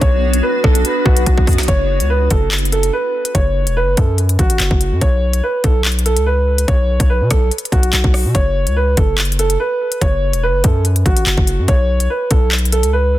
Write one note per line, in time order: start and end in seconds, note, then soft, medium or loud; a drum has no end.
0.00 0.41 B1 loud
0.00 1.61 B3 medium
0.00 1.65 B3 medium
0.00 1.65 D4 medium
0.00 1.67 D4 medium
0.00 1.64 F#4 medium
0.00 1.65 F#4 medium
0.00 0.41 C#5 loud
0.00 kick loud
0.00 closed hi-hat medium
0.34 closed hi-hat medium
0.43 0.60 B4 medium
0.64 0.84 B1 loud
0.64 0.81 A4 medium
0.64 kick loud
0.64 cross-stick loud
0.75 closed hi-hat medium
0.85 1.24 B4 loud
0.85 closed hi-hat medium
1.05 1.26 B1 loud
1.05 1.64 F#4 medium
1.05 kick loud
1.17 closed hi-hat medium
1.26 1.49 B1 loud
1.26 kick medium
1.26 closed hi-hat medium
1.38 kick medium
1.47 1.60 F#2 loud
1.47 kick loud
1.47 closed hi-hat soft
1.47 open hi-hat medium
1.53 closed hi-hat soft
1.58 1.68 B1 medium
1.58 snare loud
1.58 closed hi-hat medium
1.63 closed hi-hat medium
1.68 2.02 F#1 loud
1.68 2.07 C#5 loud
1.68 kick loud
1.68 closed hi-hat medium
2.00 2.29 C#2 loud
2.00 closed hi-hat medium
2.10 2.27 B4 medium
2.31 2.91 F#1 loud
2.31 2.48 A4 medium
2.31 kick loud
2.31 closed hi-hat medium
2.51 clap loud
2.51 closed hi-hat soft
2.58 closed hi-hat medium
2.65 closed hi-hat medium
2.72 2.89 A4 medium
2.72 closed hi-hat medium
2.83 closed hi-hat medium
2.93 3.32 B4 medium
3.25 closed hi-hat medium
3.35 3.68 F#1 loud
3.35 3.74 C#5 medium
3.35 kick loud
3.35 closed hi-hat medium
3.67 3.84 E1 loud
3.67 closed hi-hat medium
3.77 3.94 B4 medium
3.82 3.97 F#1 loud
3.97 4.37 F#2 loud
3.97 4.14 A4 medium
3.97 kick loud
3.97 closed hi-hat medium
4.18 closed hi-hat medium
4.29 closed hi-hat medium
4.39 4.59 A1 loud
4.39 4.98 F#4 medium
4.39 kick loud
4.39 closed hi-hat medium
4.50 closed hi-hat medium
4.60 4.70 F#1 loud
4.60 clap loud
4.60 closed hi-hat medium
4.71 4.93 F#1 loud
4.71 kick medium
4.81 closed hi-hat medium
4.92 5.01 F#2 loud
5.01 5.41 B1 loud
5.01 5.41 C#5 loud
5.01 kick loud
5.01 closed hi-hat medium
5.33 closed hi-hat medium
5.43 5.60 B4 medium
5.64 6.18 B1 loud
5.64 5.81 A4 medium
5.64 kick loud
5.64 closed hi-hat medium
5.85 clap loud
5.85 closed hi-hat soft
5.92 closed hi-hat medium
5.99 closed hi-hat medium
6.06 6.23 A4 medium
6.06 closed hi-hat medium
6.17 6.66 C#2 loud
6.17 closed hi-hat medium
6.26 6.66 B4 medium
6.58 closed hi-hat medium
6.68 6.99 B1 loud
6.68 7.07 C#5 loud
6.68 kick loud
6.68 closed hi-hat medium
7.00 7.22 B1 loud
7.00 kick loud
7.00 closed hi-hat medium
7.10 7.27 B4 medium
7.21 7.30 B2 loud
7.30 7.51 B1 loud
7.30 7.48 A4 medium
7.30 kick loud
7.30 cross-stick loud
7.30 closed hi-hat medium
7.51 closed hi-hat medium
7.58 closed hi-hat medium
7.65 closed hi-hat medium
7.72 7.92 B1 loud
7.72 8.31 F#4 medium
7.72 kick loud
7.72 closed hi-hat medium
7.83 closed hi-hat medium
7.93 8.04 B1 loud
7.93 clap loud
7.93 closed hi-hat medium
8.04 8.26 B1 loud
8.04 kick medium
8.14 cross-stick medium
8.14 open hi-hat soft
8.25 8.34 B2 loud
8.35 8.68 F#1 loud
8.35 8.74 C#5 loud
8.35 kick loud
8.35 closed hi-hat medium
8.67 8.96 C#2 loud
8.67 closed hi-hat medium
8.76 8.94 B4 medium
8.97 9.57 F#1 loud
8.97 9.14 A4 medium
8.97 kick loud
8.97 closed hi-hat medium
9.18 clap loud
9.18 closed hi-hat soft
9.25 closed hi-hat medium
9.32 closed hi-hat medium
9.39 9.56 A4 medium
9.39 closed hi-hat medium
9.50 closed hi-hat medium
9.60 9.99 B4 medium
9.92 closed hi-hat medium
10.01 10.35 F#1 loud
10.01 10.41 C#5 medium
10.01 kick loud
10.01 closed hi-hat medium
10.33 10.50 E1 loud
10.33 closed hi-hat medium
10.43 10.60 B4 medium
10.49 10.63 F#1 medium
10.64 11.04 F#2 loud
10.64 10.81 A4 medium
10.64 kick loud
10.64 closed hi-hat medium
10.85 closed hi-hat medium
10.96 closed hi-hat medium
11.06 11.26 A1 loud
11.06 11.65 F#4 medium
11.06 kick loud
11.06 closed hi-hat medium
11.17 closed hi-hat medium
11.26 11.37 F#1 loud
11.26 clap loud
11.26 closed hi-hat medium
11.37 11.60 F#1 loud
11.37 kick medium
11.47 closed hi-hat medium
11.58 11.68 F#2 medium
11.68 12.08 B1 loud
11.68 12.07 C#5 loud
11.68 kick loud
11.68 closed hi-hat medium
12.00 closed hi-hat medium
12.10 12.27 B4 medium
12.31 12.85 B1 loud
12.31 12.48 A4 medium
12.31 kick loud
12.31 closed hi-hat medium
12.52 clap loud
12.52 closed hi-hat soft
12.58 closed hi-hat medium
12.65 closed hi-hat medium
12.72 12.90 A4 medium
12.72 closed hi-hat medium
12.83 13.19 C#2 loud
12.83 closed hi-hat medium
12.93 13.19 B4 medium